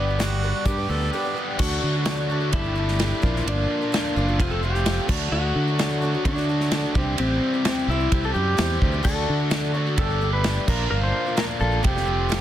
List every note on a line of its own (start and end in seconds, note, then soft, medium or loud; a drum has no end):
0.00 0.52 G1 medium
0.00 0.89 G2 medium
0.00 0.88 B3 medium
0.00 1.34 D5 medium
0.08 0.18 D4 soft
0.08 0.19 G4 medium
0.08 0.19 B4 soft
0.17 0.41 G3 medium
0.17 0.35 D4 medium
0.17 0.42 D4 medium
0.17 0.68 F#4 medium
0.17 0.35 G4 medium
0.17 0.43 G4 medium
0.17 0.36 B4 medium
0.17 0.43 B4 medium
0.17 snare loud
0.17 closed hi-hat medium
0.42 0.78 G3 medium
0.42 0.59 D4 medium
0.42 0.78 D4 medium
0.42 0.59 G4 medium
0.42 0.78 G4 medium
0.42 0.60 B4 medium
0.42 0.76 B4 medium
0.65 0.85 G2 medium
0.65 1.00 D4 medium
0.65 1.00 G4 medium
0.65 0.91 G4 medium
0.65 1.59 G4 medium
0.65 1.01 B4 medium
0.65 kick loud
0.65 closed hi-hat medium
0.78 0.88 D4 soft
0.78 0.89 G4 medium
0.78 0.89 B4 medium
0.88 1.09 D2 medium
0.88 1.00 G3 medium
0.88 1.33 B3 medium
0.88 1.01 D4 medium
0.88 1.01 G4 medium
0.88 1.12 A4 medium
0.88 0.99 B4 medium
1.01 1.12 D4 soft
1.01 1.12 G4 medium
1.01 1.12 B4 medium
1.12 1.24 G3 medium
1.12 1.46 D4 medium
1.12 1.25 D4 medium
1.12 1.47 G4 medium
1.12 1.25 G4 medium
1.12 1.47 B4 medium
1.12 1.24 B4 medium
1.25 1.35 D4 soft
1.25 1.36 G4 medium
1.25 1.36 B4 medium
1.34 1.59 G3 medium
1.34 1.58 B3 medium
1.34 1.58 D4 medium
1.34 1.60 G4 medium
1.34 1.60 B4 medium
1.59 1.79 D2 medium
1.59 1.94 D3 medium
1.59 2.52 F#3 medium
1.59 1.95 A3 medium
1.59 2.52 A3 medium
1.59 1.93 D4 loud
1.59 1.94 D4 medium
1.59 2.52 D4 medium
1.59 1.93 F#4 medium
1.59 2.49 F#4 medium
1.59 1.94 F#4 medium
1.59 2.53 F#4 medium
1.59 1.94 A4 medium
1.59 1.94 D5 loud
1.59 kick loud
1.59 crash loud
1.83 2.55 D3 medium
1.95 2.05 D4 soft
1.95 2.06 F#4 soft
1.95 2.06 A4 soft
2.05 2.29 D3 medium
2.05 2.28 A3 medium
2.05 2.22 D4 medium
2.05 2.29 D4 medium
2.05 2.23 F#4 medium
2.05 2.30 F#4 medium
2.05 2.23 A4 medium
2.05 2.30 A4 medium
2.05 2.23 D5 medium
2.05 snare loud
2.05 ride bell medium
2.30 2.41 A3 medium
2.30 2.46 D4 medium
2.30 2.42 D4 medium
2.30 2.47 F#4 medium
2.30 2.41 F#4 medium
2.30 2.47 A4 medium
2.30 2.39 A4 medium
2.30 2.47 D5 medium
2.41 2.51 D4 soft
2.41 2.53 F#4 medium
2.41 2.52 A4 medium
2.52 3.12 G1 loud
2.52 2.64 G3 medium
2.52 2.78 A3 medium
2.52 3.23 A3 medium
2.52 2.64 D4 medium
2.52 2.87 D4 medium
2.52 3.49 E4 loud
2.52 2.64 G4 medium
2.52 2.87 G4 medium
2.52 2.63 A4 medium
2.52 2.88 A4 medium
2.52 2.88 D5 medium
2.52 kick loud
2.52 ride bell medium
2.56 3.23 G3 medium
2.56 3.22 D4 medium
2.56 3.24 G4 medium
2.64 2.74 D4 soft
2.64 2.75 G4 medium
2.64 2.76 A4 medium
2.75 2.98 G3 medium
2.75 3.00 A3 medium
2.75 2.98 D4 medium
2.75 2.99 G4 medium
2.75 2.99 A4 medium
2.88 snare soft
2.99 3.22 G3 medium
2.99 3.22 A3 medium
2.99 3.22 D4 medium
2.99 3.20 D4 medium
2.99 3.23 G4 medium
2.99 3.23 A4 medium
2.99 3.22 D5 medium
2.99 snare loud
2.99 ride bell medium
3.21 3.43 A#1 loud
3.21 3.80 A#2 medium
3.21 3.46 D3 medium
3.21 3.80 F3 medium
3.21 4.38 F3 medium
3.21 3.81 A#3 medium
3.21 4.38 A#3 medium
3.21 3.78 D4 medium
3.21 3.81 D4 medium
3.21 4.38 D4 medium
3.21 3.78 F4 medium
3.21 3.81 F4 medium
3.21 4.36 F4 medium
3.21 3.80 A#4 medium
3.21 3.79 A#4 medium
3.21 3.79 D5 loud
3.21 kick loud
3.27 3.45 A#2 medium
3.36 snare soft
3.46 3.65 G1 medium
3.46 4.38 A#2 loud
3.46 4.38 D3 medium
3.46 4.18 A#3 loud
3.46 4.43 D4 medium
3.46 4.16 D4 loud
3.46 ride bell medium
3.50 4.14 F4 loud
3.81 3.92 A#3 soft
3.81 3.92 D4 medium
3.81 3.93 F4 medium
3.81 3.93 A#4 medium
3.92 4.15 A#2 medium
3.92 4.16 F3 medium
3.92 4.15 A#3 medium
3.92 4.09 D4 medium
3.92 4.16 D4 medium
3.92 4.10 F4 medium
3.92 4.16 F4 medium
3.92 4.10 A#4 medium
3.92 4.16 A#4 medium
3.92 4.10 D5 medium
3.92 snare loud
3.92 ride bell medium
4.15 4.40 F#1 medium
4.15 4.27 A#3 medium
4.15 4.32 D4 medium
4.15 4.28 D4 medium
4.15 4.32 F4 medium
4.15 4.28 F4 medium
4.15 4.33 A#4 medium
4.15 4.27 A#4 medium
4.15 4.33 D5 medium
4.28 4.40 A#3 soft
4.28 4.40 D4 soft
4.28 4.40 F4 medium
4.28 4.39 A#4 medium
4.37 4.99 F1 medium
4.37 4.83 F2 medium
4.37 4.83 C3 medium
4.37 4.51 F3 medium
4.37 5.07 G3 medium
4.37 4.51 G3 medium
4.37 5.08 A3 medium
4.37 5.07 C4 medium
4.37 4.51 C4 medium
4.37 5.07 F4 medium
4.37 4.72 F4 medium
4.37 4.50 F4 medium
4.37 4.73 G4 medium
4.37 4.73 A4 medium
4.37 4.49 A4 medium
4.37 4.73 C5 medium
4.37 kick loud
4.37 ride bell medium
4.41 4.62 A3 loud
4.41 4.52 F4 loud
4.50 4.62 C4 soft
4.50 4.62 F4 medium
4.50 4.62 A4 medium
4.50 4.61 A4 loud
4.63 4.84 F3 medium
4.63 4.84 G3 medium
4.63 4.85 A3 medium
4.63 4.84 C4 medium
4.63 4.85 F4 medium
4.63 5.07 G4 loud
4.63 4.85 A4 medium
4.75 snare soft
4.84 5.06 F2 medium
4.84 5.07 C3 medium
4.84 5.08 F3 medium
4.84 5.09 G3 medium
4.84 5.07 A3 medium
4.84 5.09 C4 medium
4.84 5.08 F4 medium
4.84 5.09 F4 medium
4.84 5.08 G4 medium
4.84 5.07 A4 medium
4.84 5.09 A4 medium
4.84 5.09 C5 medium
4.84 snare loud
4.84 ride bell medium
5.07 5.29 D2 medium
5.07 5.67 D3 medium
5.07 6.94 F#3 medium
5.07 5.67 A3 medium
5.07 6.94 A3 medium
5.07 5.64 D4 medium
5.07 5.67 D4 medium
5.07 6.94 D4 medium
5.07 5.64 F#4 medium
5.07 6.93 F#4 medium
5.07 5.67 F#4 medium
5.07 5.64 A4 medium
5.07 5.66 A4 medium
5.07 5.65 D5 medium
5.07 kick loud
5.07 crash loud
5.31 5.51 D2 loud
5.31 6.23 D3 loud
5.31 6.03 A3 loud
5.31 6.02 D4 loud
5.31 6.28 F#4 loud
5.31 6.00 F#4 loud
5.55 6.15 D3 medium
5.68 5.79 D4 soft
5.68 5.79 F#4 medium
5.68 5.79 A4 medium
5.79 6.02 D3 medium
5.79 6.00 A3 medium
5.79 5.96 D4 medium
5.79 6.01 D4 medium
5.79 5.96 F#4 medium
5.79 6.02 F#4 medium
5.79 5.96 A4 medium
5.79 6.03 A4 medium
5.79 5.96 D5 medium
5.79 snare loud
5.79 ride bell medium
6.01 6.13 A3 medium
6.01 6.14 D4 medium
6.01 6.19 D4 medium
6.01 6.19 F#4 medium
6.01 6.14 F#4 medium
6.01 6.19 A4 medium
6.01 6.13 A4 medium
6.01 6.20 D5 medium
6.14 6.37 D4 medium
6.14 6.36 F#4 medium
6.14 6.35 A4 medium
6.24 6.69 D3 medium
6.24 6.84 D3 loud
6.24 6.50 A3 medium
6.24 7.15 D4 loud
6.24 6.60 D4 medium
6.24 6.47 D4 medium
6.24 6.60 F#4 medium
6.24 6.60 A4 medium
6.24 6.60 D5 medium
6.24 kick loud
6.24 ride bell medium
6.28 6.46 F#4 medium
6.36 6.48 D4 soft
6.36 6.48 F#4 medium
6.36 6.48 A4 medium
6.36 snare soft
6.49 6.71 A3 medium
6.49 6.72 D4 medium
6.49 6.72 F#4 medium
6.49 6.72 A4 medium
6.60 snare soft
6.72 6.83 D3 medium
6.72 6.83 A3 medium
6.72 6.95 D4 medium
6.72 6.84 D4 medium
6.72 6.95 F#4 medium
6.72 6.83 F#4 medium
6.72 6.82 A4 medium
6.72 6.96 A4 medium
6.72 6.96 D5 medium
6.72 snare loud
6.72 ride bell medium
6.83 6.95 D4 medium
6.83 6.95 F#4 medium
6.83 6.95 A4 medium
6.93 7.15 C2 loud
6.93 7.53 C3 medium
6.93 7.53 E3 medium
6.93 9.02 G3 medium
6.93 7.53 G3 medium
6.93 9.03 C4 medium
6.93 7.51 C4 medium
6.93 7.53 C4 medium
6.93 9.02 E4 medium
6.93 7.53 E4 medium
6.93 7.51 E4 medium
6.93 7.19 G4 loud
6.93 9.02 G4 medium
6.93 7.52 G4 medium
6.93 7.52 C5 medium
6.93 7.52 C5 loud
6.93 kick loud
7.17 7.39 A1 loud
7.17 8.11 C3 medium
7.17 8.09 E3 loud
7.17 7.89 G3 loud
7.17 7.88 C4 loud
7.17 7.91 C4 loud
7.17 7.86 G4 loud
7.17 ride bell medium
7.53 7.64 G3 soft
7.53 7.65 C4 soft
7.53 7.65 E4 soft
7.53 7.65 C5 soft
7.65 7.88 C3 medium
7.65 7.88 E3 medium
7.65 7.88 G3 medium
7.65 7.82 C4 medium
7.65 7.89 C4 loud
7.65 7.82 E4 medium
7.65 7.89 E4 medium
7.65 7.82 G4 medium
7.65 7.82 C5 medium
7.65 7.89 C5 loud
7.65 snare loud
7.65 ride bell medium
7.87 8.08 C2 medium
7.87 8.00 G3 medium
7.87 8.06 C4 medium
7.87 8.00 C4 medium
7.87 8.06 E4 medium
7.87 8.25 E4 loud
7.87 8.13 G4 medium
7.87 8.06 G4 medium
7.91 7.99 E4 medium
7.91 7.98 C5 medium
7.91 8.07 C5 medium
8.00 8.24 G3 soft
8.00 8.24 C4 soft
8.00 8.23 E4 medium
8.00 8.22 C5 medium
8.10 8.31 C2 medium
8.10 8.57 E3 medium
8.10 8.34 G3 medium
8.10 8.45 C4 medium
8.10 8.32 C4 medium
8.10 8.46 E4 medium
8.10 8.45 G4 medium
8.10 8.31 G4 medium
8.10 8.46 C5 medium
8.10 kick loud
8.10 ride bell medium
8.23 8.33 G3 soft
8.23 8.33 C4 medium
8.23 8.35 E4 medium
8.23 8.33 A4 loud
8.23 8.35 C5 medium
8.32 8.56 F#2 medium
8.32 8.57 G3 medium
8.32 8.57 C4 medium
8.32 8.57 E4 medium
8.32 8.59 G4 medium
8.32 8.78 G4 medium
8.36 8.57 C5 medium
8.57 8.79 E2 medium
8.57 8.92 C3 medium
8.57 8.93 E3 medium
8.57 8.93 G3 medium
8.57 8.93 C4 medium
8.57 8.92 C4 medium
8.57 8.92 E4 medium
8.57 8.93 E4 medium
8.57 8.93 G4 medium
8.57 8.80 G4 loud
8.57 8.91 C5 medium
8.57 8.93 C5 medium
8.57 snare loud
8.57 ride bell medium
8.81 9.03 D2 medium
8.81 9.05 G3 medium
8.81 9.04 C4 medium
8.81 9.03 G4 medium
8.81 kick medium
8.92 9.03 G3 soft
8.92 9.04 C4 soft
8.92 9.04 E4 medium
8.92 9.04 C5 medium
9.01 9.25 D2 medium
9.01 9.39 D3 medium
9.01 9.92 A3 medium
9.01 9.39 A3 medium
9.01 9.94 D4 medium
9.01 9.38 D4 loud
9.01 9.39 D4 medium
9.01 9.95 F#4 medium
9.01 9.38 F#4 medium
9.01 9.39 F#4 medium
9.01 9.94 A4 medium
9.01 9.39 A4 medium
9.01 9.38 A4 medium
9.01 9.71 A4 loud
9.01 kick loud
9.01 crash loud
9.06 9.72 F#4 loud
9.06 9.39 D5 loud
9.29 9.99 D3 medium
9.39 9.50 D4 soft
9.39 9.50 F#4 soft
9.39 9.51 A4 medium
9.50 9.74 D3 medium
9.50 9.73 A3 medium
9.50 9.68 D4 medium
9.50 9.73 D4 medium
9.50 9.68 F#4 medium
9.50 9.74 F#4 medium
9.50 9.75 A4 loud
9.50 9.69 A4 medium
9.50 9.69 D5 medium
9.50 snare loud
9.50 ride bell medium
9.74 9.86 A3 medium
9.74 9.86 D4 medium
9.74 9.92 D4 medium
9.74 9.86 F#4 medium
9.74 9.92 F#4 medium
9.74 9.92 A4 medium
9.74 9.85 A4 medium
9.74 9.92 D5 loud
9.87 9.97 D4 soft
9.87 9.98 F#4 medium
9.87 9.98 A4 medium
9.94 10.57 G1 loud
9.94 10.10 G3 medium
9.94 10.65 A3 medium
9.94 10.65 D4 medium
9.94 10.66 G4 medium
9.94 10.66 A4 medium
9.94 kick loud
9.94 ride bell medium
9.98 10.24 A3 medium
9.98 10.32 D4 medium
9.98 10.10 D4 medium
9.98 10.10 G4 medium
9.98 10.33 G4 medium
9.98 10.32 A4 medium
9.98 10.33 A4 medium
9.98 10.09 A4 medium
9.98 10.33 D5 medium
10.10 10.21 D4 soft
10.10 10.21 G4 soft
10.10 10.22 A4 medium
10.21 10.43 G3 medium
10.21 10.44 A3 medium
10.21 10.43 D4 medium
10.21 10.44 G4 medium
10.21 10.44 A4 medium
10.33 10.66 B4 medium
10.44 10.67 G3 medium
10.44 10.67 A3 medium
10.44 10.66 D4 medium
10.44 10.68 D4 medium
10.44 10.67 G4 medium
10.44 10.68 G4 medium
10.44 10.67 A4 medium
10.44 10.68 A4 loud
10.44 10.68 D5 medium
10.44 snare loud
10.44 ride bell medium
10.67 10.88 A#1 medium
10.67 11.26 A#2 medium
10.67 10.91 D3 medium
10.67 11.26 F3 medium
10.67 11.83 A#3 medium
10.67 11.27 A#3 medium
10.67 11.83 D4 medium
10.67 11.23 D4 medium
10.67 11.27 D4 medium
10.67 11.83 F4 medium
10.67 11.24 F4 medium
10.67 11.27 F4 medium
10.67 11.83 A#4 medium
10.67 10.89 A#4 medium
10.67 11.24 A#4 medium
10.67 11.25 A#4 medium
10.67 11.24 D5 medium
10.67 kick loud
10.67 crash loud
10.91 11.11 G1 loud
10.91 11.83 A#2 medium
10.91 11.83 D3 medium
10.91 11.62 A#3 loud
10.91 11.60 D4 loud
10.91 11.59 F4 loud
10.91 11.03 A#4 loud
11.03 11.38 C5 loud
11.26 11.37 A#3 soft
11.26 11.37 D4 soft
11.26 11.37 F4 medium
11.26 11.37 A#4 medium
11.37 11.60 A#2 medium
11.37 11.61 F3 medium
11.37 11.59 A#3 medium
11.37 11.55 D4 medium
11.37 11.60 D4 medium
11.37 11.55 F4 medium
11.37 11.60 F4 medium
11.37 11.61 A#4 loud
11.37 11.44 A#4 loud
11.37 11.55 A#4 medium
11.37 11.56 D5 medium
11.37 snare loud
11.37 ride bell medium
11.60 11.85 A#1 loud
11.60 11.72 A#3 medium
11.60 11.72 D4 medium
11.60 11.78 D4 medium
11.60 11.71 F4 medium
11.60 11.78 F4 medium
11.60 11.82 A4 medium
11.60 11.70 A#4 medium
11.60 11.79 A#4 medium
11.60 11.79 D5 medium
11.71 11.82 A#3 soft
11.71 11.84 D4 soft
11.71 11.83 F4 medium
11.71 11.84 A#4 medium
11.82 12.41 F1 loud
11.82 12.29 F2 medium
11.82 12.30 C3 loud
11.82 11.95 F3 medium
11.82 11.95 G3 medium
11.82 12.08 A3 loud
11.82 12.41 A3 medium
11.82 11.96 C4 medium
11.82 11.95 F4 medium
11.82 12.18 F4 medium
11.82 12.18 G4 medium
11.82 12.41 G4 medium
11.82 11.94 A4 medium
11.82 kick loud
11.82 ride bell medium
11.86 12.41 C4 medium
11.86 12.41 F4 medium
11.86 12.41 G4 medium
11.86 12.19 A4 medium
11.86 12.19 C5 medium
11.95 12.05 C4 soft
11.95 12.06 F4 medium
11.95 12.06 A4 medium
11.95 snare soft
12.06 12.28 G3 medium
12.06 12.32 A3 medium
12.06 12.28 C4 medium
12.06 12.28 F4 medium
12.06 12.29 A4 medium
12.11 12.31 F3 medium
12.29 12.41 F2 medium
12.29 12.41 C3 medium
12.29 12.41 F3 medium
12.29 12.41 G3 medium
12.29 12.41 A3 loud
12.29 12.41 C4 medium
12.29 12.41 F4 loud
12.29 12.41 F4 medium
12.29 12.41 G4 medium
12.29 12.40 A4 loud
12.29 12.41 A4 medium
12.29 12.41 C5 medium
12.29 snare loud
12.29 ride bell medium
12.34 12.41 F4 loud